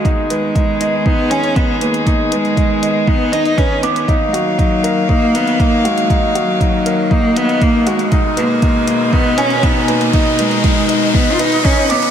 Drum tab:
HH |x-x-x-x---xxx-xx|x-xxx-x---xxx-xx|x-x-x-x---xxx-xx|x-x-x-x---xxx-xx|
BD |o---o---o---o---|o---o---o---o---|o---o---o---o---|o---o---o---o---|

HH |x-x-x-x---xxx-xx|x-xxx-x---xxx-xx|
BD |o---o---o---o---|o---o---o---o---|